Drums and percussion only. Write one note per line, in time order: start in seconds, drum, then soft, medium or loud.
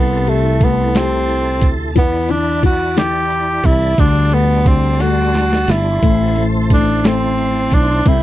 0.27 closed hi-hat soft
0.61 kick medium
0.61 closed hi-hat medium
0.95 snare medium
0.95 closed hi-hat medium
1.29 closed hi-hat soft
1.61 kick medium
1.61 closed hi-hat medium
1.96 kick medium
1.96 closed hi-hat medium
2.29 closed hi-hat soft
2.63 kick medium
2.63 closed hi-hat medium
2.97 snare medium
2.97 closed hi-hat medium
3.31 closed hi-hat soft
3.64 kick medium
3.64 closed hi-hat medium
3.98 kick medium
3.98 closed hi-hat medium
4.31 closed hi-hat soft
4.66 kick medium
4.66 closed hi-hat medium
5.00 snare soft
5.00 closed hi-hat medium
5.34 snare medium
5.34 closed hi-hat soft
5.53 snare medium
5.68 snare medium
5.68 closed hi-hat medium
6.02 kick medium
6.02 closed hi-hat medium
6.36 closed hi-hat soft
6.70 kick medium
6.70 closed hi-hat medium
7.04 snare loud
7.04 closed hi-hat medium
7.38 closed hi-hat soft
7.71 kick medium
7.71 closed hi-hat medium
8.06 kick medium
8.06 closed hi-hat medium